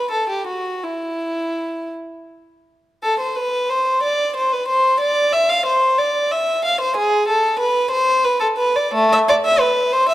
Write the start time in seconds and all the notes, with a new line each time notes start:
Already playing: B4
0.11 A4
0.29 G4
0.47 F#4
0.84 E4
3.03 A4
3.20 C5
3.36 B4
3.70 C5
4.03 D5
4.36 C5
4.53 B4
4.68 C5
5.00 D5
5.33 E5
5.50 F5
5.66 C5
5.98 D5
6.32 E5
6.65 F5
6.81 C5
6.97 G#4
7.28 A4
7.59 B4
7.91 C5
8.24 B4
8.40 A4
8.57 B4
8.76 D5
8.94 A3
9.13 E5
9.28 D5
9.46 E5
9.60 B4
9.92 C5
10.09 E5